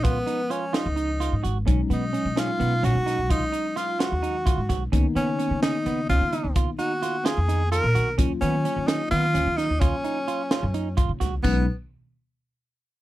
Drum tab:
CC |-------|-------|-------|-------|
HH |xxxxxxx|xxxxxxx|xxxxxxx|xxxxxxx|
SD |---o-o-|---o--o|--oo--o|---oo--|
BD |o------|o------|o----oo|o------|

CC |-------|-------|-------|x------|
HH |xxxxxxx|xxxxxxx|xxxxxxx|-------|
SD |--ooo--|---o--o|---o--o|-------|
BD |o------|o------|o----oo|o------|